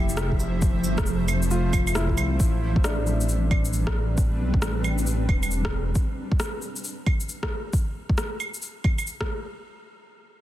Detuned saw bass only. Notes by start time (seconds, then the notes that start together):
Already playing: F1
0.84 G1
0.98 F1
2.18 C2
2.40 A1
4.40 B1
4.54 A1
5.29 E1
5.51 E1